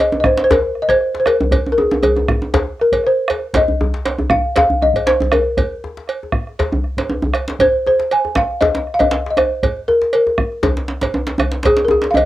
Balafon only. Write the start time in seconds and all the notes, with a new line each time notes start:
0.00 D#5
0.20 D#5
0.26 C5
0.44 C5
0.51 A#4
0.82 D#5
0.89 C5
1.20 C5
1.27 A#4
1.72 A#4
1.78 G#4
2.02 G#4
2.81 A#4
3.07 C5
3.57 D#5
4.31 F5
4.58 F5
4.82 D#5
5.07 C5
5.32 A#4
7.61 C5
7.87 C5
8.13 G#5
8.37 F5
8.61 D#5
8.94 F5
8.99 D#5
9.31 D#5
9.38 C5
9.88 A#4
10.15 A#4
11.66 G#4
11.85 A#4
11.91 G#4
12.11 F5
12.15 D#5